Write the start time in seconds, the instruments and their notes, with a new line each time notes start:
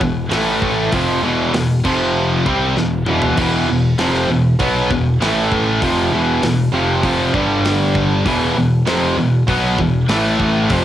0.00 picked electric bass E1, distorted electric guitar E2 B2, kick
0.31 picked electric bass A1, distorted electric guitar A2 E3 A3, snare, open hi-hat
0.62 kick
0.92 picked electric bass F1, distorted electric guitar F2 C3 F3, kick, open hi-hat
1.22 picked electric bass E1, distorted electric guitar E2 B2 E3
1.53 picked electric bass E1, distorted electric guitar E2 B2, snare, open hi-hat
1.84 picked electric bass F1, distorted electric guitar F2 C3 F3, kick, crash
2.46 picked electric bass C2, distorted electric guitar C3 G3 C4, kick
2.75 picked electric bass E1, distorted electric guitar E2 B2, snare
3.06 picked electric bass E1, distorted electric guitar E2 B2 E3, mid tom
3.22 floor tom
3.37 picked electric bass E1, distorted electric guitar E2 B2 E3, kick, open hi-hat, crash
3.68 picked electric bass E1, distorted electric guitar E2 B2
3.98 picked electric bass F1, distorted electric guitar F2 C3 F3, snare, open hi-hat
4.14 snare
4.28 picked electric bass E1, distorted electric guitar E2 B2
4.59 picked electric bass B1, distorted electric guitar B2 F#3 B3, kick, open hi-hat
4.90 picked electric bass E1, distorted electric guitar E2 B2, kick
5.21 picked electric bass A1, distorted electric guitar A2 E3 A3, snare, open hi-hat
5.52 kick
5.81 picked electric bass F1, distorted electric guitar F2 C3 F3, kick, open hi-hat
6.10 picked electric bass E1, distorted electric guitar E2 B2
6.14 distorted electric guitar E3
6.42 picked electric bass E1, distorted electric guitar E2 B2, snare, open hi-hat
6.72 picked electric bass F1, distorted electric guitar F2 C3 F3
7.03 picked electric bass F1, distorted electric guitar F2 C3 F3, kick, open hi-hat
7.33 picked electric bass G1, distorted electric guitar G2 D3 G3, kick
7.65 snare, open hi-hat
7.95 kick
8.25 picked electric bass E1, distorted electric guitar E2 B2 E3, kick, open hi-hat
8.56 picked electric bass E1, distorted electric guitar E2 B2
8.86 picked electric bass F1, distorted electric guitar F2 C3 F3, snare, open hi-hat
9.17 picked electric bass E1, distorted electric guitar E2 B2
9.47 picked electric bass B1, distorted electric guitar B2 F#3 B3, kick, open hi-hat
9.78 picked electric bass E1, distorted electric guitar E2 B2, kick
10.08 picked electric bass A1, distorted electric guitar A2 E3 A3, snare, open hi-hat
10.40 kick
10.69 picked electric bass F1, distorted electric guitar F2 C3 F3, kick, open hi-hat